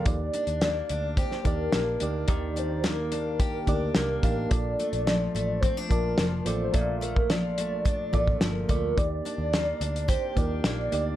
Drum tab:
HH |x-xxx-x-x-x-x-x-|x-x-x-x-x-x-x-x-|x-xxx-x-x-x-x-x-|x-x-x-x-x-x-x-x-|
SD |----o----o--o---|----o-------o---|----o-------o---|----o-------o---|
BD |o-------o-o-----|o-------o-o---o-|o-------o-o-----|o--o----o-oo--o-|

HH |x-x-x-xxx-x-x-x-|
SD |----o-------o---|
BD |o-------o-o-----|